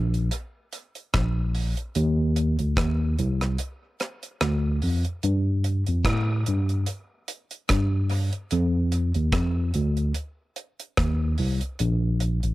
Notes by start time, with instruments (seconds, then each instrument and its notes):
Already playing: tine electric piano A#1
0.14 closed hi-hat
0.31 closed hi-hat
0.73 closed hi-hat
0.95 closed hi-hat
1.14 tine electric piano A#1, kick, cross-stick, closed hi-hat
1.55 open hi-hat
1.77 closed hi-hat
1.95 tine electric piano D#2, closed hi-hat
2.36 closed hi-hat
2.59 tine electric piano D2, closed hi-hat
2.77 tine electric piano D#2, kick, cross-stick, closed hi-hat
3.19 tine electric piano C2, closed hi-hat
3.41 cross-stick, closed hi-hat
3.58 closed hi-hat
4.00 cross-stick, closed hi-hat
4.23 closed hi-hat
4.41 tine electric piano D2, cross-stick, closed hi-hat
4.82 tine electric piano F2, open hi-hat
5.05 closed hi-hat
5.23 tine electric piano G2, closed hi-hat
5.64 closed hi-hat
5.87 tine electric piano F2, closed hi-hat
6.05 tine electric piano A2, kick, cross-stick, closed hi-hat
6.46 tine electric piano G2, closed hi-hat
6.69 closed hi-hat
6.86 closed hi-hat
7.28 closed hi-hat
7.51 closed hi-hat
7.69 tine electric piano G2, kick, cross-stick, closed hi-hat
8.10 open hi-hat
8.33 closed hi-hat
8.51 tine electric piano F2, closed hi-hat
8.92 closed hi-hat
9.14 tine electric piano D#2, closed hi-hat
9.32 tine electric piano F2, kick, cross-stick, closed hi-hat
9.74 tine electric piano D2, closed hi-hat
9.97 closed hi-hat
10.14 closed hi-hat
10.56 closed hi-hat
10.80 closed hi-hat
10.97 tine electric piano D#2, kick, cross-stick, closed hi-hat
11.38 tine electric piano C2, open hi-hat
11.61 closed hi-hat
11.79 tine electric piano A#1, closed hi-hat
12.20 closed hi-hat
12.43 tine electric piano A1, closed hi-hat